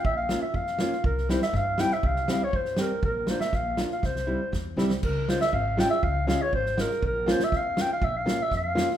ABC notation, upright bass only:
X:1
M:2/4
L:1/8
Q:1/4=120
K:none
V:1 name="Upright bass" clef=bass
_B,,,2 F,,2 | C,,2 G,,2 | C,,2 G,,2 | _B,,,2 B,,,2 |
C,,2 E,, C,, | _D,,2 _A,,,2 | _D,,2 _A,,,2 | _B,,,2 F,,2 |
_B,,,2 F,,2 |]